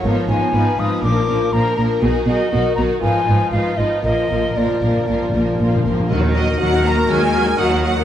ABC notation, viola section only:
X:1
M:4/4
L:1/16
Q:1/4=121
K:Ebm
V:1 name="Viola section"
[F,C]2 [F,C]2 [F,C]2 [F,C]2 [F,B,]2 [F,B,]2 [F,B,]2 [F,B,]2 | [^D,^D]2 [D,D]2 [D,D]2 [D,D]2 [F,E]2 [F,E]2 [F,E]2 [F,E]2 | [F,B,]2 [F,B,]2 [F,B,]2 [F,B,]2 [F,B,]2 [F,B,]2 [F,B,]2 [F,B,]2 | [G,G] [B,E] [G,G] [B,E] [G,G] [B,E] [G,G] [B,E] [G,G] [B,E] [G,G] [B,E] [G,G] [B,E] [G,G] [B,E] |]